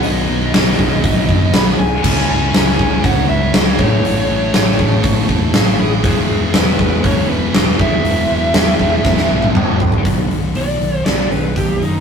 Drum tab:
CC |----------------|x---------------|----------------|----------------|
HH |o---o---o---o---|----o---o---o---|o---o---o---o---|o---o---o---o---|
SD |----o-------o---|----o-------o---|----o-------o---|----o-------o---|
T1 |----------------|----------------|----------------|----------------|
T2 |----------------|----------------|----------------|----------------|
FT |----------------|----------------|----------------|----------------|
BD |------o-o-o-----|o-----o-o-----o-|------o-o-o-----|o-----o-o-----o-|

CC |----------------|----------------|
HH |o---o-----------|o-o-o-o-o-o-o-o-|
SD |----o---oo------|--------o-------|
T1 |-----------o----|----------------|
T2 |------------o---|----------------|
FT |--------------oo|----------------|
BD |------o-o-------|o-----------o---|